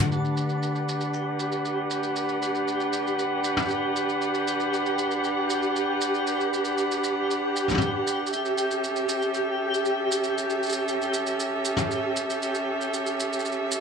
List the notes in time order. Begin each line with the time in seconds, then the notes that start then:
Already playing: D3 A3 B3 D4 A5
0.11 D4 G4 B4 F#5, shaker
0.25 shaker
0.37 shaker
0.49 shaker
0.63 shaker
0.75 shaker
0.89 shaker
1.01 shaker
1.14 shaker
1.39 shaker
1.52 shaker
1.65 shaker
1.90 shaker
2.03 shaker
2.16 shaker
2.29 shaker
2.42 shaker
2.55 shaker
2.68 shaker
2.80 shaker
2.93 shaker
3.07 shaker
3.19 shaker
3.44 shaker
3.57 mid tom, shaker
3.62 shaker
3.65 shaker
3.68 shaker
3.70 shaker
3.96 shaker
4.09 shaker
4.22 shaker
4.34 shaker
4.48 shaker
4.60 shaker
4.74 shaker
4.86 shaker
4.99 shaker
5.11 shaker
5.24 shaker
5.50 shaker
5.62 shaker
5.76 shaker
6.01 shaker
6.14 shaker
6.27 shaker
6.41 shaker
6.53 shaker
6.65 shaker
6.78 shaker
6.92 shaker
7.04 shaker
7.31 shaker
7.56 shaker
7.68 mid tom, shaker
7.71 mid tom
7.74 mid tom
7.78 mid tom, shaker
8.07 shaker
8.27 shaker
8.31 C#4 A4 E5, shaker
8.45 shaker
8.58 shaker
8.71 shaker
8.84 shaker
8.96 shaker
9.09 shaker
9.22 shaker
9.34 shaker
9.74 shaker
9.85 shaker
10.12 shaker
10.24 shaker
10.38 shaker
10.50 shaker
10.63 shaker
10.66 shaker
10.69 shaker
10.73 shaker
10.88 shaker
11.02 shaker
11.14 shaker
11.27 shaker
11.40 shaker
11.65 shaker
11.77 mid tom, shaker
11.91 shaker
12.16 shaker
12.30 shaker
12.42 shaker
12.55 shaker
12.81 shaker
12.94 shaker
13.06 shaker
13.20 shaker
13.33 shaker
13.39 shaker
13.45 shaker
13.52 shaker
13.71 shaker